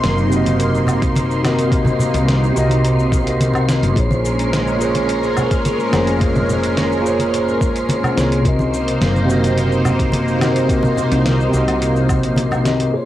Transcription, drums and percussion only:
0.04 snare medium
0.04 closed hi-hat medium
0.04 shaker soft
0.18 shaker soft
0.32 shaker medium
0.46 closed hi-hat soft
0.46 high conga medium
0.46 shaker soft
0.60 closed hi-hat medium
0.60 shaker soft
0.75 shaker soft
0.87 low conga medium
0.87 low woodblock medium
0.87 shaker medium
1.02 kick loud
1.02 closed hi-hat soft
1.02 shaker soft
1.16 closed hi-hat medium
1.16 high conga loud
1.16 shaker soft
1.31 shaker soft
1.45 snare medium
1.45 closed hi-hat soft
1.45 low woodblock medium
1.45 shaker medium
1.59 closed hi-hat soft
1.59 shaker soft
1.72 kick loud
1.72 closed hi-hat medium
1.72 shaker soft
1.85 high conga medium
1.85 low conga medium
1.85 shaker soft
1.99 low conga medium
1.99 shaker medium
2.14 closed hi-hat soft
2.14 shaker soft
2.28 snare medium
2.28 closed hi-hat medium
2.28 shaker soft
2.43 shaker soft
2.56 shaker medium
2.69 closed hi-hat soft
2.69 high conga medium
2.69 shaker soft
2.85 closed hi-hat medium
2.85 shaker soft
2.99 shaker soft
3.12 kick loud
3.12 closed hi-hat soft
3.12 shaker medium
3.27 closed hi-hat soft
3.27 shaker soft
3.40 closed hi-hat medium
3.40 high conga medium
3.40 shaker soft
3.54 low conga medium
3.54 low woodblock medium
3.54 shaker soft
3.69 snare medium
3.69 closed hi-hat soft
3.69 shaker medium
3.83 closed hi-hat soft
3.83 shaker soft
3.96 kick loud
3.96 closed hi-hat medium
3.96 shaker soft
4.11 high conga loud
4.11 shaker soft
4.25 shaker medium
4.39 closed hi-hat soft
4.39 shaker soft
4.53 snare medium
4.53 closed hi-hat medium
4.53 shaker soft
4.67 shaker soft
4.81 shaker medium
4.95 closed hi-hat soft
4.95 high conga medium
4.95 shaker soft
5.09 closed hi-hat medium
5.09 shaker soft
5.23 shaker soft
5.37 low conga medium
5.37 low woodblock medium
5.37 shaker medium
5.51 kick loud
5.51 closed hi-hat soft
5.51 shaker soft
5.65 closed hi-hat medium
5.65 high conga medium
5.65 shaker soft
5.80 shaker soft
5.93 snare medium
5.93 closed hi-hat soft
5.93 low woodblock medium
5.93 shaker medium
6.07 closed hi-hat soft
6.07 shaker soft
6.21 kick loud
6.21 closed hi-hat medium
6.21 shaker soft
6.35 high conga medium
6.35 low conga medium
6.35 shaker soft
6.49 low conga medium
6.49 shaker medium
6.64 closed hi-hat soft
6.64 shaker soft
6.77 snare medium
6.77 closed hi-hat medium
6.77 shaker soft
6.92 shaker soft
7.06 shaker medium
7.19 closed hi-hat soft
7.19 high conga medium
7.19 shaker soft
7.34 closed hi-hat medium
7.34 shaker soft
7.48 shaker soft
7.61 kick loud
7.61 shaker medium
7.76 closed hi-hat soft
7.76 shaker soft
7.89 closed hi-hat medium
7.89 high conga medium
7.89 shaker soft
8.04 low conga medium
8.04 low woodblock medium
8.04 shaker soft
8.18 snare medium
8.18 closed hi-hat soft
8.18 shaker medium
8.32 closed hi-hat soft
8.32 shaker soft
8.45 kick loud
8.45 closed hi-hat medium
8.45 shaker soft
8.59 high conga medium
8.59 shaker soft
8.74 shaker medium
8.88 closed hi-hat medium
8.88 shaker soft
9.02 snare medium
9.02 closed hi-hat medium
9.02 shaker soft
9.16 shaker soft
9.30 shaker medium
9.43 closed hi-hat soft
9.43 high conga medium
9.43 shaker soft
9.58 closed hi-hat medium
9.58 shaker soft
9.72 shaker soft
9.85 low conga medium
9.85 low woodblock medium
9.85 shaker medium
9.99 kick loud
9.99 closed hi-hat soft
9.99 shaker soft
10.12 closed hi-hat medium
10.12 high conga medium
10.12 shaker soft
10.28 shaker soft
10.41 snare medium
10.41 closed hi-hat soft
10.41 low woodblock medium
10.41 shaker medium
10.56 closed hi-hat medium
10.56 shaker soft
10.69 kick loud
10.69 closed hi-hat medium
10.69 shaker soft
10.83 high conga medium
10.83 low conga loud
10.83 shaker soft
10.97 low conga medium
10.97 shaker medium
11.12 closed hi-hat soft
11.12 shaker soft
11.26 snare medium
11.26 closed hi-hat medium
11.26 shaker soft
11.40 shaker soft
11.53 shaker medium
11.68 closed hi-hat soft
11.68 high conga medium
11.68 low woodblock medium
11.68 shaker soft
11.82 closed hi-hat medium
11.82 shaker soft
11.96 shaker soft
12.09 kick loud
12.09 low woodblock medium
12.09 shaker medium
12.23 closed hi-hat soft
12.23 shaker soft
12.36 closed hi-hat medium
12.36 high conga loud
12.36 shaker soft
12.51 low conga medium
12.51 low woodblock medium
12.51 shaker soft
12.65 snare medium
12.65 closed hi-hat soft
12.65 shaker medium
12.80 closed hi-hat medium
12.80 shaker soft

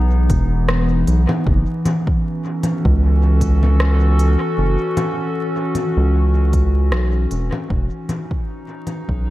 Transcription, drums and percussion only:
0.30 kick loud
0.30 closed hi-hat soft
0.68 cross-stick medium
1.07 closed hi-hat soft
1.29 low conga medium
1.47 kick loud
1.86 closed hi-hat medium
1.86 low conga medium
2.07 kick loud
2.63 closed hi-hat soft
2.63 low conga medium
2.85 kick loud
3.41 kick medium
3.41 closed hi-hat medium
3.63 low conga medium
3.80 cross-stick medium
4.19 closed hi-hat soft
4.97 closed hi-hat soft
4.97 low conga medium
5.75 closed hi-hat soft
5.75 low conga medium
6.53 kick loud
6.53 closed hi-hat medium
6.92 cross-stick medium
7.31 closed hi-hat soft
7.52 low conga medium
7.70 kick loud
8.09 closed hi-hat soft
8.09 low conga medium
8.31 kick loud
8.87 closed hi-hat soft
8.87 low conga medium
9.09 kick loud

